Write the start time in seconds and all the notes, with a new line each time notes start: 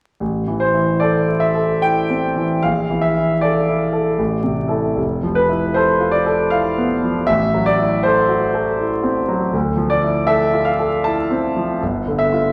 0.20 A1
0.47 E3
0.60 C5
0.74 E4
1.00 A4 D5
1.28 E4
1.40 E5
1.55 A4
1.82 E4 G5
2.10 C4
2.36 E3
2.63 A#1 F5
2.90 E3
3.02 E5
3.17 E4
3.41 A4 D5
3.69 E4
3.93 A4
4.18 A1
4.43 C3
4.68 E4 A4
4.96 F1
5.23 F3
5.35 B4
5.49 E4
5.74 A4 C5
6.00 F4
6.11 D5
6.26 A4
6.50 E4 F5
6.78 B3
7.04 F3
7.27 A1 E5
7.54 F#3
7.66 D5
7.79 E4
8.03 A4 C5
8.28 F#4
8.54 A4
8.79 E4
9.03 C4
9.28 F#3
9.54 D2
9.77 F3
9.90 D5
10.04 E4
10.27 A4 E5
10.53 F4
10.65 F5
10.79 A4
11.04 E4 A5
11.31 C4
11.56 F3
11.82 G1
12.08 D3
12.19 E5
12.33 F4